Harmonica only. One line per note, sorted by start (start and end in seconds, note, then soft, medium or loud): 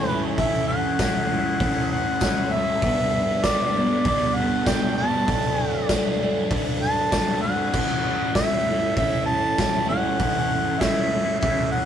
0.00 0.08 C#5 medium
0.08 0.20 B4 medium
0.37 0.66 E5 loud
0.68 1.87 F#5 loud
1.92 2.54 F#5 loud
2.52 3.46 E5 loud
3.44 4.06 D5 loud
4.06 4.36 D5 loud
4.35 4.69 F#5 medium
4.67 4.97 G5 loud
4.98 5.86 A5 loud
6.82 7.39 A5 loud
7.42 8.31 F#5 loud
8.36 8.93 E5 loud
8.96 9.25 E5 loud
9.26 9.84 A5 loud
9.89 10.82 F#5 loud
10.80 11.39 E5 loud
11.40 11.70 E5 loud
11.72 11.85 F#5 loud